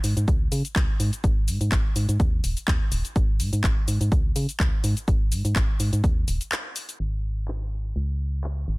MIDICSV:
0, 0, Header, 1, 3, 480
1, 0, Start_track
1, 0, Tempo, 480000
1, 1238, Time_signature, 4, 2, 24, 8
1, 8783, End_track
2, 0, Start_track
2, 0, Title_t, "FM bass"
2, 0, Program_c, 0, 39
2, 38, Note_on_c, 0, 44, 90
2, 147, Note_off_c, 0, 44, 0
2, 167, Note_on_c, 0, 44, 87
2, 260, Note_off_c, 0, 44, 0
2, 278, Note_on_c, 0, 37, 96
2, 483, Note_off_c, 0, 37, 0
2, 518, Note_on_c, 0, 49, 80
2, 627, Note_off_c, 0, 49, 0
2, 758, Note_on_c, 0, 37, 94
2, 867, Note_off_c, 0, 37, 0
2, 998, Note_on_c, 0, 44, 95
2, 1107, Note_off_c, 0, 44, 0
2, 1238, Note_on_c, 0, 32, 101
2, 1478, Note_on_c, 0, 44, 85
2, 1493, Note_off_c, 0, 32, 0
2, 1587, Note_off_c, 0, 44, 0
2, 1608, Note_on_c, 0, 44, 81
2, 1701, Note_off_c, 0, 44, 0
2, 1718, Note_on_c, 0, 32, 101
2, 1827, Note_off_c, 0, 32, 0
2, 1958, Note_on_c, 0, 44, 92
2, 2067, Note_off_c, 0, 44, 0
2, 2087, Note_on_c, 0, 44, 85
2, 2180, Note_off_c, 0, 44, 0
2, 2198, Note_on_c, 0, 39, 101
2, 2403, Note_off_c, 0, 39, 0
2, 2438, Note_on_c, 0, 27, 84
2, 2547, Note_off_c, 0, 27, 0
2, 2678, Note_on_c, 0, 39, 95
2, 2787, Note_off_c, 0, 39, 0
2, 2918, Note_on_c, 0, 27, 97
2, 3027, Note_off_c, 0, 27, 0
2, 3158, Note_on_c, 0, 32, 96
2, 3398, Note_on_c, 0, 44, 85
2, 3413, Note_off_c, 0, 32, 0
2, 3507, Note_off_c, 0, 44, 0
2, 3528, Note_on_c, 0, 44, 79
2, 3620, Note_off_c, 0, 44, 0
2, 3638, Note_on_c, 0, 32, 100
2, 3747, Note_off_c, 0, 32, 0
2, 3878, Note_on_c, 0, 44, 89
2, 3987, Note_off_c, 0, 44, 0
2, 4008, Note_on_c, 0, 44, 90
2, 4100, Note_off_c, 0, 44, 0
2, 4118, Note_on_c, 0, 37, 101
2, 4323, Note_off_c, 0, 37, 0
2, 4358, Note_on_c, 0, 49, 80
2, 4467, Note_off_c, 0, 49, 0
2, 4598, Note_on_c, 0, 37, 94
2, 4707, Note_off_c, 0, 37, 0
2, 4838, Note_on_c, 0, 44, 98
2, 4947, Note_off_c, 0, 44, 0
2, 5078, Note_on_c, 0, 32, 99
2, 5318, Note_on_c, 0, 44, 83
2, 5333, Note_off_c, 0, 32, 0
2, 5427, Note_off_c, 0, 44, 0
2, 5448, Note_on_c, 0, 44, 81
2, 5541, Note_off_c, 0, 44, 0
2, 5558, Note_on_c, 0, 32, 102
2, 5667, Note_off_c, 0, 32, 0
2, 5798, Note_on_c, 0, 44, 92
2, 5907, Note_off_c, 0, 44, 0
2, 5928, Note_on_c, 0, 44, 89
2, 6021, Note_off_c, 0, 44, 0
2, 6038, Note_on_c, 0, 39, 101
2, 6243, Note_off_c, 0, 39, 0
2, 6278, Note_on_c, 0, 27, 97
2, 6387, Note_off_c, 0, 27, 0
2, 6998, Note_on_c, 0, 32, 82
2, 7936, Note_off_c, 0, 32, 0
2, 7958, Note_on_c, 0, 37, 80
2, 8656, Note_off_c, 0, 37, 0
2, 8678, Note_on_c, 0, 32, 83
2, 8783, Note_off_c, 0, 32, 0
2, 8783, End_track
3, 0, Start_track
3, 0, Title_t, "Drums"
3, 39, Note_on_c, 9, 46, 107
3, 41, Note_on_c, 9, 82, 80
3, 139, Note_off_c, 9, 46, 0
3, 141, Note_off_c, 9, 82, 0
3, 168, Note_on_c, 9, 42, 48
3, 170, Note_on_c, 9, 82, 43
3, 268, Note_off_c, 9, 42, 0
3, 270, Note_off_c, 9, 82, 0
3, 278, Note_on_c, 9, 36, 113
3, 279, Note_on_c, 9, 42, 60
3, 281, Note_on_c, 9, 82, 32
3, 378, Note_off_c, 9, 36, 0
3, 379, Note_off_c, 9, 42, 0
3, 381, Note_off_c, 9, 82, 0
3, 518, Note_on_c, 9, 46, 100
3, 520, Note_on_c, 9, 82, 77
3, 618, Note_off_c, 9, 46, 0
3, 620, Note_off_c, 9, 82, 0
3, 648, Note_on_c, 9, 42, 52
3, 650, Note_on_c, 9, 82, 44
3, 748, Note_off_c, 9, 42, 0
3, 750, Note_off_c, 9, 82, 0
3, 758, Note_on_c, 9, 36, 109
3, 759, Note_on_c, 9, 42, 63
3, 760, Note_on_c, 9, 39, 112
3, 761, Note_on_c, 9, 82, 33
3, 858, Note_off_c, 9, 36, 0
3, 859, Note_off_c, 9, 42, 0
3, 860, Note_off_c, 9, 39, 0
3, 861, Note_off_c, 9, 82, 0
3, 999, Note_on_c, 9, 46, 102
3, 1001, Note_on_c, 9, 82, 75
3, 1099, Note_off_c, 9, 46, 0
3, 1101, Note_off_c, 9, 82, 0
3, 1128, Note_on_c, 9, 42, 49
3, 1130, Note_on_c, 9, 82, 44
3, 1228, Note_off_c, 9, 42, 0
3, 1230, Note_off_c, 9, 82, 0
3, 1238, Note_on_c, 9, 36, 110
3, 1239, Note_on_c, 9, 42, 65
3, 1241, Note_on_c, 9, 82, 34
3, 1338, Note_off_c, 9, 36, 0
3, 1339, Note_off_c, 9, 42, 0
3, 1341, Note_off_c, 9, 82, 0
3, 1478, Note_on_c, 9, 46, 102
3, 1481, Note_on_c, 9, 82, 79
3, 1578, Note_off_c, 9, 46, 0
3, 1581, Note_off_c, 9, 82, 0
3, 1608, Note_on_c, 9, 42, 50
3, 1610, Note_on_c, 9, 82, 44
3, 1708, Note_off_c, 9, 42, 0
3, 1710, Note_off_c, 9, 82, 0
3, 1718, Note_on_c, 9, 36, 99
3, 1718, Note_on_c, 9, 42, 62
3, 1719, Note_on_c, 9, 39, 109
3, 1721, Note_on_c, 9, 82, 33
3, 1818, Note_off_c, 9, 36, 0
3, 1818, Note_off_c, 9, 42, 0
3, 1819, Note_off_c, 9, 39, 0
3, 1821, Note_off_c, 9, 82, 0
3, 1958, Note_on_c, 9, 46, 104
3, 1961, Note_on_c, 9, 82, 82
3, 2058, Note_off_c, 9, 46, 0
3, 2061, Note_off_c, 9, 82, 0
3, 2088, Note_on_c, 9, 42, 49
3, 2090, Note_on_c, 9, 82, 44
3, 2188, Note_off_c, 9, 42, 0
3, 2190, Note_off_c, 9, 82, 0
3, 2198, Note_on_c, 9, 36, 112
3, 2198, Note_on_c, 9, 42, 61
3, 2200, Note_on_c, 9, 82, 34
3, 2298, Note_off_c, 9, 36, 0
3, 2298, Note_off_c, 9, 42, 0
3, 2300, Note_off_c, 9, 82, 0
3, 2438, Note_on_c, 9, 46, 98
3, 2441, Note_on_c, 9, 82, 77
3, 2538, Note_off_c, 9, 46, 0
3, 2541, Note_off_c, 9, 82, 0
3, 2568, Note_on_c, 9, 42, 52
3, 2570, Note_on_c, 9, 82, 47
3, 2668, Note_off_c, 9, 42, 0
3, 2670, Note_off_c, 9, 82, 0
3, 2678, Note_on_c, 9, 36, 106
3, 2678, Note_on_c, 9, 42, 63
3, 2679, Note_on_c, 9, 39, 112
3, 2680, Note_on_c, 9, 82, 35
3, 2778, Note_off_c, 9, 36, 0
3, 2778, Note_off_c, 9, 42, 0
3, 2779, Note_off_c, 9, 39, 0
3, 2780, Note_off_c, 9, 82, 0
3, 2917, Note_on_c, 9, 46, 99
3, 2920, Note_on_c, 9, 82, 80
3, 3017, Note_off_c, 9, 46, 0
3, 3020, Note_off_c, 9, 82, 0
3, 3047, Note_on_c, 9, 42, 52
3, 3050, Note_on_c, 9, 82, 44
3, 3147, Note_off_c, 9, 42, 0
3, 3150, Note_off_c, 9, 82, 0
3, 3158, Note_on_c, 9, 36, 112
3, 3158, Note_on_c, 9, 42, 66
3, 3160, Note_on_c, 9, 82, 34
3, 3258, Note_off_c, 9, 36, 0
3, 3258, Note_off_c, 9, 42, 0
3, 3260, Note_off_c, 9, 82, 0
3, 3398, Note_on_c, 9, 46, 100
3, 3400, Note_on_c, 9, 82, 81
3, 3498, Note_off_c, 9, 46, 0
3, 3500, Note_off_c, 9, 82, 0
3, 3528, Note_on_c, 9, 42, 52
3, 3530, Note_on_c, 9, 82, 44
3, 3628, Note_off_c, 9, 42, 0
3, 3630, Note_off_c, 9, 82, 0
3, 3638, Note_on_c, 9, 36, 104
3, 3638, Note_on_c, 9, 42, 68
3, 3639, Note_on_c, 9, 39, 114
3, 3641, Note_on_c, 9, 82, 33
3, 3738, Note_off_c, 9, 36, 0
3, 3738, Note_off_c, 9, 42, 0
3, 3739, Note_off_c, 9, 39, 0
3, 3741, Note_off_c, 9, 82, 0
3, 3878, Note_on_c, 9, 46, 101
3, 3881, Note_on_c, 9, 82, 83
3, 3978, Note_off_c, 9, 46, 0
3, 3981, Note_off_c, 9, 82, 0
3, 4008, Note_on_c, 9, 42, 52
3, 4010, Note_on_c, 9, 82, 44
3, 4108, Note_off_c, 9, 42, 0
3, 4110, Note_off_c, 9, 82, 0
3, 4118, Note_on_c, 9, 36, 113
3, 4119, Note_on_c, 9, 42, 62
3, 4121, Note_on_c, 9, 82, 34
3, 4218, Note_off_c, 9, 36, 0
3, 4219, Note_off_c, 9, 42, 0
3, 4221, Note_off_c, 9, 82, 0
3, 4358, Note_on_c, 9, 46, 97
3, 4360, Note_on_c, 9, 82, 80
3, 4458, Note_off_c, 9, 46, 0
3, 4460, Note_off_c, 9, 82, 0
3, 4488, Note_on_c, 9, 42, 54
3, 4490, Note_on_c, 9, 82, 47
3, 4588, Note_off_c, 9, 42, 0
3, 4590, Note_off_c, 9, 82, 0
3, 4598, Note_on_c, 9, 36, 101
3, 4598, Note_on_c, 9, 42, 68
3, 4599, Note_on_c, 9, 39, 114
3, 4600, Note_on_c, 9, 82, 34
3, 4698, Note_off_c, 9, 36, 0
3, 4698, Note_off_c, 9, 42, 0
3, 4699, Note_off_c, 9, 39, 0
3, 4700, Note_off_c, 9, 82, 0
3, 4838, Note_on_c, 9, 46, 98
3, 4840, Note_on_c, 9, 82, 83
3, 4938, Note_off_c, 9, 46, 0
3, 4940, Note_off_c, 9, 82, 0
3, 4968, Note_on_c, 9, 42, 51
3, 4970, Note_on_c, 9, 82, 47
3, 5068, Note_off_c, 9, 42, 0
3, 5070, Note_off_c, 9, 82, 0
3, 5078, Note_on_c, 9, 36, 116
3, 5078, Note_on_c, 9, 42, 67
3, 5080, Note_on_c, 9, 82, 33
3, 5178, Note_off_c, 9, 36, 0
3, 5178, Note_off_c, 9, 42, 0
3, 5180, Note_off_c, 9, 82, 0
3, 5318, Note_on_c, 9, 46, 99
3, 5320, Note_on_c, 9, 82, 81
3, 5418, Note_off_c, 9, 46, 0
3, 5420, Note_off_c, 9, 82, 0
3, 5448, Note_on_c, 9, 42, 53
3, 5450, Note_on_c, 9, 82, 44
3, 5548, Note_off_c, 9, 42, 0
3, 5550, Note_off_c, 9, 82, 0
3, 5558, Note_on_c, 9, 36, 102
3, 5558, Note_on_c, 9, 42, 68
3, 5559, Note_on_c, 9, 39, 117
3, 5560, Note_on_c, 9, 82, 33
3, 5658, Note_off_c, 9, 36, 0
3, 5658, Note_off_c, 9, 42, 0
3, 5659, Note_off_c, 9, 39, 0
3, 5660, Note_off_c, 9, 82, 0
3, 5798, Note_on_c, 9, 46, 104
3, 5800, Note_on_c, 9, 82, 83
3, 5898, Note_off_c, 9, 46, 0
3, 5900, Note_off_c, 9, 82, 0
3, 5928, Note_on_c, 9, 42, 55
3, 5930, Note_on_c, 9, 82, 45
3, 6028, Note_off_c, 9, 42, 0
3, 6030, Note_off_c, 9, 82, 0
3, 6038, Note_on_c, 9, 36, 111
3, 6039, Note_on_c, 9, 42, 67
3, 6041, Note_on_c, 9, 82, 33
3, 6138, Note_off_c, 9, 36, 0
3, 6139, Note_off_c, 9, 42, 0
3, 6141, Note_off_c, 9, 82, 0
3, 6278, Note_on_c, 9, 46, 100
3, 6280, Note_on_c, 9, 82, 76
3, 6378, Note_off_c, 9, 46, 0
3, 6380, Note_off_c, 9, 82, 0
3, 6408, Note_on_c, 9, 42, 56
3, 6410, Note_on_c, 9, 82, 46
3, 6508, Note_off_c, 9, 42, 0
3, 6510, Note_off_c, 9, 82, 0
3, 6519, Note_on_c, 9, 42, 68
3, 6520, Note_on_c, 9, 39, 122
3, 6521, Note_on_c, 9, 82, 34
3, 6619, Note_off_c, 9, 42, 0
3, 6620, Note_off_c, 9, 39, 0
3, 6621, Note_off_c, 9, 82, 0
3, 6758, Note_on_c, 9, 46, 100
3, 6760, Note_on_c, 9, 82, 81
3, 6858, Note_off_c, 9, 46, 0
3, 6860, Note_off_c, 9, 82, 0
3, 6888, Note_on_c, 9, 42, 55
3, 6890, Note_on_c, 9, 82, 44
3, 6988, Note_off_c, 9, 42, 0
3, 6990, Note_off_c, 9, 82, 0
3, 7479, Note_on_c, 9, 39, 109
3, 7579, Note_off_c, 9, 39, 0
3, 8439, Note_on_c, 9, 39, 110
3, 8539, Note_off_c, 9, 39, 0
3, 8783, End_track
0, 0, End_of_file